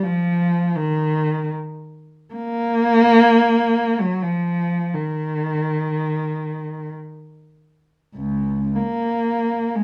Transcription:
cello
0.03 F3
0.77 D#3
2.34 A#3
4.00 F#3
4.22 F3
4.94 D#3
8.17 C#2
8.75 A#3
9.75 G#3

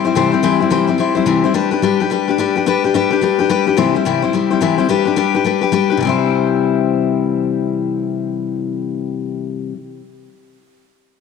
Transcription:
steel-string acoustic guitar
0.05 G3 C4 E4 C5
0.15 C3 E3 G3 C4 E4 C5
0.32 G3 C4 E4 C5
0.43 C3 E3 G3 C4 E4 C5
0.60 G3 C4 E4 C5
0.70 C3 E3 G3 C4 E4 C5
0.87 G3 C4 E4 C5
0.98 G3 C4 E4 C5
1.15 G3 C4 E4 C5
1.26 C3 E3 G3 C4 E4 C5
1.44 G3 C4 E4 C5
1.54 G3 D4 G4 B4
1.71 D4 G4 B4
1.82 G3 D4 G4 B4
2.00 D4 G4 B4
2.10 G3 D4 G4 B4
2.28 D4 G4 B4
2.38 G3 D4 G4 B4
2.56 D4 G4 B4
2.66 G3 D4 G4 B4
2.84 D4 G4 B4
2.94 G3 D4 G4 B4
3.10 D4 G4 B4
3.21 G3 D4 G4 B4
3.39 D4 G4 B4
3.50 G3 D4 G4 B4
3.66 D4 G4 B4
3.77 C3 E3 G3 C4 E4 C5
3.95 G3 C4 E4 C5
4.05 C3 E3 G3 C4 E4 C5
4.22 G3 C4 E4 C5
4.33 G3 C4 E4 C5
4.51 G3 C4 E4 C5
4.61 C3 E3 G3 C4 E4 C5
4.78 G3 C4 E4 C5
4.89 G3 D4 G4 B4
5.05 D4 G4 B4
5.16 G3 D4 G4 B4
5.35 D4 G4 B4
5.44 G3 D4 G4 B4
5.61 D4 G4 B4
5.72 G3 D4 G4 B4
5.90 D4 G4 B4
5.97 C3 E3
6.02 G3 C4
6.07 E4 C5

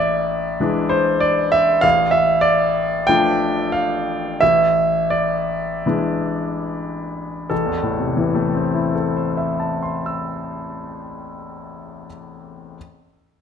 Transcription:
grand piano
Already playing: A1 D5 E5
0.60 E3 G#3 D4
0.89 C5
1.20 D5
1.52 E5
1.81 A1 F5
2.11 E5
2.41 D5
3.07 F3 A3 D4 G5
3.72 F5
4.41 A1 E5
5.10 D5
5.86 E3 G#3 D4
7.50 A1 A4
7.66 E2
7.82 A2
8.00 C3
8.17 E3
8.35 A3
8.54 C4
8.74 E4
8.95 A4
9.17 C5
9.37 E5
9.60 A5
9.83 C6
10.06 E6

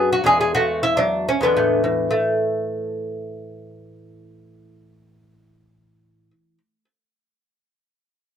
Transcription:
lute
Already playing: F#2 F#3 D4 G#4
0.13 F#4
0.24 E2 G#3 D4 G#4
0.41 G#4
0.55 A3 F#4
0.83 E4
0.97 F#3 D4
1.29 C#4
1.41 E2 D3 G#3 B3 D4
1.57 A2
1.84 E3
2.11 A3

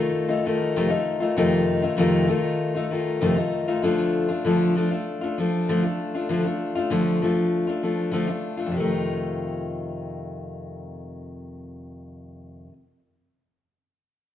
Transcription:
steel-string acoustic guitar
Already playing: D#3 A3 D#4 F4
0.29 D#3 A3 D#4 F4
0.46 D#3 A3 D#4 F4
0.76 F2 C3 D#3 A3 D#4 F4
0.88 D#3 A3 D#4 F4
1.20 D#3 A3 D#4 F4
1.37 F2 C3 D#3 A3 D#4 F4
1.82 D#3 A3 D#4 F4
1.97 F2 C3 D#3 A3 D#4 F4
2.28 D#3 A3 D#4 F4
2.75 D#3 A3 D#4 F4
2.91 D#3 A3 D#4 F4
3.21 F2 C3 D#3 A3 D#4 F4
3.36 D#3 A3 D#4 F4
3.68 D#3 A3 D#4 F4
3.82 D3 F3 A3 D4 F4
4.29 A3 D4 F4
4.45 D3 F3 A3 D4 F4
4.75 F3 A3 D4 F4
4.91 A3 D4 F4
5.21 A3 D4 F4
5.38 F3 A3 D4 F4
5.69 D3 F3 A3 D4 F4
5.83 A3 D4 F4
6.15 A3 D4 F4
6.29 D3 F3 A3 D4 F4
6.44 A3 D4 F4
6.75 A3 D4 F4
6.90 D3 F3 A3 D4 F4
7.22 F3 A3 D4 F4
7.67 A3 D4 F4
7.83 F3 A3 D4 F4
8.11 D3 F3 A3 D4 F4
8.27 A3 D4 F4
8.57 A3 D4 F4
8.66 F2
8.71 C3
8.77 D#3 A3
8.83 D#4 F4

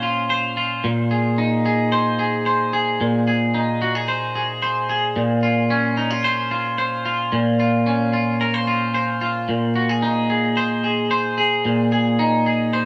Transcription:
clean electric guitar
Already playing: A#2 C#4 C5
0.03 F4
0.30 C5
0.57 F4
0.84 A#2
1.11 G#4
1.38 D#4
1.66 G#4
1.92 C5
2.19 G#4
2.46 C5
2.73 G#4
3.01 A#2
3.27 G#4
3.54 D#4
3.82 F#4
3.95 G#4
4.08 C5
4.35 G#4
4.62 C5
4.89 G#4
5.16 A#2
5.43 F4
5.70 C#4
5.97 D#4
6.10 F4
6.24 C5
6.51 F4
6.78 C5
7.05 F4
7.32 A#2
7.60 F4
7.87 C#4
8.13 F4
8.41 A#4
8.54 C5
8.67 F4
8.94 C5
9.21 F4
9.49 A#2
9.76 F#4
9.89 G#4
10.02 D#4
10.30 G#4
10.57 C5
10.84 G#4
11.11 C5
11.38 G#4
11.65 A#2
11.92 G#4
12.19 D#4
12.46 G#4
12.73 C5

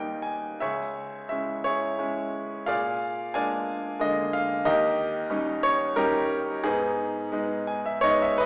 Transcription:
grand piano
Already playing: D#2 G3 A#3 D#4 A#4 D#5 G5
0.22 G#5
0.60 C#2 G#4 C#5 E5
1.29 G#3 C#4 E4 E5
1.64 E4 G#4 C#5
1.99 G#3 C#4 E4
2.66 A#2 G#4 D5 F5
3.34 G#3 A#3 D4 D5 F5 G#5
3.99 D3 G#3 A#3 D#5
4.33 F5
4.65 D#2 G4 A#4 D#5
5.30 G3 C#4 D#4
5.63 C#5
5.96 G3 C#4 D#4 G4 A#4
6.64 G#2 B3 D#4 G#4
7.32 G#3 B3 D#4
7.67 G#5
7.86 E5
8.01 G#3 B3 D#4 C#5 D#5
8.22 E5
8.38 B4 D#5

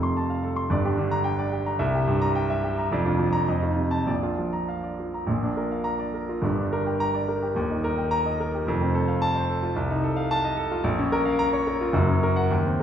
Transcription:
grand piano
Already playing: F1 F2 C3 A4 F5
0.03 C6
0.17 A5
0.30 F5
0.44 A4
0.56 C6
0.70 G1 G2 D5
0.85 D4 G4
0.98 D3
1.11 A#5
1.24 G5
1.39 D5
1.52 G4
1.66 A#5
1.79 C2 E5
1.95 G4
2.08 G2
2.21 A#5
2.35 G5
2.50 E5
2.64 G4
2.78 A#5
2.91 F1 F2 D5
3.05 D4 F4
3.19 F3
3.33 A#5
3.48 F2 D#5
3.63 D#4 F4
3.77 C3
3.91 A5
4.06 A#1 A#2 D5
4.23 D4 F4
4.38 F3
4.53 A#5
4.68 F5
4.83 D5
5.00 F4
5.14 A#5
5.27 A#1 A#2
5.43 D4
5.57 A#4
5.71 F5
5.84 A#5
5.99 D5
6.14 A#4
6.29 F4
6.42 G1 G2
6.58 D4
6.72 A#4
6.86 G5
7.00 A#5
7.14 D5
7.28 A#4
7.42 G4
7.55 D#1 D#2
7.71 D#4
7.84 A#4
7.98 G5
8.11 A#5
8.26 D#5
8.40 A#4
8.54 G4
8.67 F1 F2
8.81 C4
8.95 A4
9.08 F5
9.22 A5
9.36 C5
9.49 A4
9.63 F4
9.76 C2
9.90 D#4
10.04 A4
10.16 F5
10.31 A5
10.44 D#5
10.57 A4
10.72 F4
10.84 A#1
10.99 C#4
11.12 A#4
11.25 F5
11.39 A#5
11.53 C#5
11.67 A#4
11.81 F4
11.93 F#1 F#2
12.09 C#4
12.23 A#4
12.36 F#5
12.51 D#2
12.65 C4

